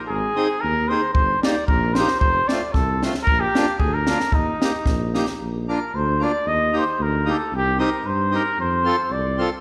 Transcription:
0.08 G#1 G#4
0.36 C4 D#4 G#4
0.61 D#2 A#4
0.89 C4 D#4 G#4 C5
1.14 G1 C5, kick
1.43 A#3 D#4 G4 D5, snare
1.67 A#1 A#4, kick
1.94 A#3 C5, snare
1.98 D#4 G4
2.08 snare
2.20 F1 C5, kick
2.48 A3 C4 F4 D5, snare
2.73 C2 A4, kick, snare
3.03 A3 C4 F4, snare
3.15 snare
3.23 A#4, kick
3.28 A#1
3.40 G4
3.55 A#3 D4 F4, snare
3.79 D2 G#4, kick
3.94 A#4
4.06 A#3 D4 F4, snare
4.20 snare
4.32 D#2 D#4, kick
4.61 A#3 D#4 G4, snare
4.86 A#1, kick, snare
5.14 A#3 D#4 G4, snare
5.27 snare
5.41 A#1
5.68 A#3 D4 F4 A#4
5.94 D2 C5
6.19 A#3 D4 F4
6.24 D5
6.46 D#2 D#5
6.72 A#3 D#4 G4
6.78 C5
6.99 D2 A#4
7.25 A#3 D#4 G4
7.31 A4
7.52 C2
7.56 G4
7.79 C4 D#4 G4 A#4
8.04 G2 C5
8.31 C4 D#4 G4
8.36 A#4
8.58 F2 C5
8.84 C4 F4 A4
9.10 C2 D5
9.38 C4 F4 A4

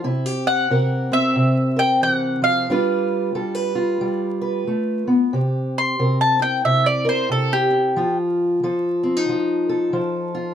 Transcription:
0.04 C3 E4
0.26 G4
0.47 F#5
0.70 C3 A#4
1.12 C4 E5
1.36 C3
1.76 A#4 G5
2.02 E3 F#5
2.42 F3 F5
2.70 G3 D4 F4 B4
3.35 G3 A4
3.55 B4
3.75 F4
4.01 G3
4.41 B4
4.67 A3
5.07 B3
5.33 C3 G4
5.78 C6
5.99 C3 A#4
6.21 A5
6.39 E4 G5
6.65 C3 E5
6.86 D5
7.05 A#4
7.09 C5
7.29 C3 A4
7.53 G4
7.71 E4
7.96 F3 F4
8.63 F3 A4
9.03 C4
9.16 D#4
9.29 F3
9.69 A4
9.93 F3
10.35 F4

